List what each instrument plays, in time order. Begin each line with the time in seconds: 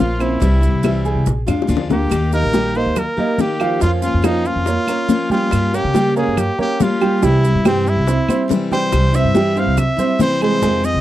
Already playing: grand piano F3 F4, steel-string acoustic guitar F3
0.00 upright bass A#1, steel-string acoustic guitar A#3 C#4 F4, trumpet F4, high bongo, low bongo
0.19 steel-string acoustic guitar A#3 C#4 F4, grand piano C4 C5, trumpet E4, high bongo, high conga, claves, maracas
0.40 upright bass C2, steel-string acoustic guitar C3 E3 G3 C4 E4, grand piano G3 G4, high bongo, high conga, maracas
0.61 steel-string acoustic guitar G3 C4 E4, high bongo, high conga, maracas
0.73 upright bass C2
0.83 steel-string acoustic guitar C3 E3 G3 C4 E4, grand piano E4 E5, high bongo, high conga, claves, maracas
1.05 grand piano G#4 G#5, high bongo, high conga, maracas
1.15 upright bass C3
1.26 upright bass A#1, muted steel-string acoustic guitar stroke, high bongo, high conga, maracas
1.47 upright bass F2, steel-string acoustic guitar G#3 D4 F4, grand piano F4 F5, high bongo, high conga, claves, maracas
1.62 high bongo
1.67 upright bass D2, steel-string acoustic guitar F3 G#3 D4 F4, high conga, maracas
1.77 low bongo
1.89 steel-string acoustic guitar G#3 D4 F4, grand piano A#3 A#4, trumpet G4, low bongo, high conga, maracas
2.10 upright bass D#2, steel-string acoustic guitar D#3 A#3 D#4 G4, high bongo, high conga, claves, maracas
2.32 grand piano A#3 A#4 D#5, steel-string acoustic guitar A#3 D#4 G4, trumpet A#4, high bongo, high conga, maracas
2.43 upright bass A#1
2.53 steel-string acoustic guitar D#3 A#3 D#4 G4, grand piano G3 G4 G5, high bongo, high conga, maracas
2.74 grand piano A#3 A#4 D#5, steel-string acoustic guitar A#3 D#4 G4, trumpet C5, high bongo, high conga, maracas
2.86 upright bass D#2
2.96 trumpet A#4, muted steel-string acoustic guitar stroke, high bongo, high conga, low conga, claves, maracas
3.17 grand piano A#3 A#4 D#5, steel-string acoustic guitar A#3 D#4 G4, high conga, low conga
3.38 steel-string acoustic guitar D#3 A#3 D#4 G4, trumpet G4, high bongo, low bongo, high conga, maracas
3.60 grand piano F3 F4 F5, high bongo, high conga, claves, maracas
3.80 upright bass F2, steel-string acoustic guitar F3 A#3 C#4 F4, grand piano F3 F4 F5, trumpet F4, high bongo, high conga, maracas
4.02 steel-string acoustic guitar A#3 C#4 F4, trumpet F4, high bongo, high conga, maracas
4.14 upright bass F2
4.22 steel-string acoustic guitar F3 A#3 C#4 F4, grand piano F3 F4 F5, trumpet D#4, high bongo, high conga, claves, maracas
4.45 steel-string acoustic guitar A#3 C#4 F4, trumpet F4, high bongo, high conga, maracas
4.56 upright bass F2
4.66 grand piano A#3 A#4 C#5, muted steel-string acoustic guitar stroke, high bongo, high conga, maracas
4.87 grand piano A#3 A#4 C#5, steel-string acoustic guitar A#3 C#4 F4, high conga, claves, maracas
5.08 steel-string acoustic guitar F3 A#3 C#4 F4, high bongo, low bongo, high conga, maracas
5.30 grand piano G3 G4 G5, trumpet F4, high bongo, high conga, maracas
5.51 upright bass G2, steel-string acoustic guitar G3 A#3 C#4 G4, high bongo, high conga, claves, maracas
5.73 grand piano A#3 A#4 C#5, steel-string acoustic guitar A#3 C#4 G4, trumpet G4, high bongo, high conga, maracas
5.84 upright bass C#3
5.94 steel-string acoustic guitar G3 A#3 C#4 G4, grand piano G3 G4 G5, high bongo, high conga, maracas
6.16 grand piano A#3 A#4 C#5, steel-string acoustic guitar A#3 C#4 G4, trumpet G#4, high bongo, high conga, maracas
6.27 upright bass G2
6.37 trumpet G4, muted steel-string acoustic guitar stroke, high bongo, high conga, low conga, claves, maracas
6.58 grand piano A#3 A#4 C#5, steel-string acoustic guitar A#3 C#4 G4, trumpet G4, high conga, low conga
6.80 steel-string acoustic guitar G3 A#3 C#4 G4, trumpet F4, high bongo, low bongo, high conga, maracas
7.01 grand piano G3 G4 G5, high bongo, high conga, claves, maracas
7.22 upright bass C2, steel-string acoustic guitar C3 E3 G3 C4 E4, grand piano G3 G4 G5, trumpet E4, high bongo, high conga, maracas
7.44 steel-string acoustic guitar G3 C4 E4, high bongo, high conga, maracas
7.54 upright bass G2
7.65 steel-string acoustic guitar C3 E3 G3 C4 E4, grand piano G3 G4 G5, trumpet C4, high bongo, high conga, claves, maracas
7.86 steel-string acoustic guitar G3 C4 E4, trumpet E4, high bongo, high conga, maracas
7.97 upright bass C2
8.07 grand piano C4 C5 E5, muted steel-string acoustic guitar stroke, high bongo, high conga, maracas
8.28 steel-string acoustic guitar G3 C4 E4, grand piano C4 C5 E5, high conga, claves, maracas
8.48 steel-string acoustic guitar C3 E3 G3 C4 E4, high bongo, low bongo, low conga, maracas
8.71 grand piano G3 G4 G5, trumpet C5, high bongo, low conga, maracas
8.92 upright bass C2, steel-string acoustic guitar C3 E3 G3 C4 E4, high bongo, high conga, claves, maracas
9.12 steel-string acoustic guitar G3 C4 E4, grand piano C4 C5 E5, trumpet E5, high bongo, high conga, maracas
9.24 upright bass G2
9.35 steel-string acoustic guitar C3 E3 G3 C4 E4, grand piano G3 G4 G5, high bongo, high conga, maracas
9.55 steel-string acoustic guitar G3 C4 E4, grand piano C4 C5 E5, trumpet F5, high bongo, high conga, maracas
9.66 upright bass C2
9.77 trumpet E5, muted steel-string acoustic guitar stroke, high bongo, high conga, low conga, claves, maracas
9.97 steel-string acoustic guitar G3 C4 E4, grand piano C4 C5 E5, high conga, low conga, maracas
10.19 steel-string acoustic guitar C3 E3 G3 C4 E4, trumpet C5, high bongo, low bongo, high conga, maracas
10.41 grand piano G#3 G#4 G#5, trumpet C5, high bongo, high conga, claves, maracas
10.61 upright bass F2, steel-string acoustic guitar C3 D#3 G#3 C4 F4, grand piano G#3 G#4 G#5, high bongo, high conga, maracas
10.83 steel-string acoustic guitar G#3 C4 F4, trumpet D#5, high bongo, high conga, maracas
10.94 upright bass C2